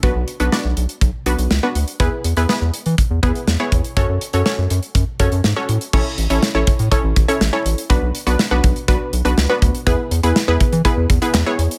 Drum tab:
CC |----------------|----------------|----------------|x---------------|
HH |x-xx--xxx-xx--xx|x-xx--xxx-xx--xx|x-xx--xxx-xx--xx|--xx--xxx-xx--xx|
CP |----------------|----------------|----------------|----------------|
SD |----o-------o---|----o-------o---|----o-------o---|----o-------o---|
BD |o-------o-------|o-------o-o---o-|o-------o-o-----|o-----o-o-o-----|

CC |----------------|----------------|
HH |x-xx--xxx-xx--xx|x-xx--xxx-xx--xx|
CP |----------------|------------x---|
SD |----o-------o---|----o-------o---|
BD |o-----o-o-----o-|o-----o-o-o-----|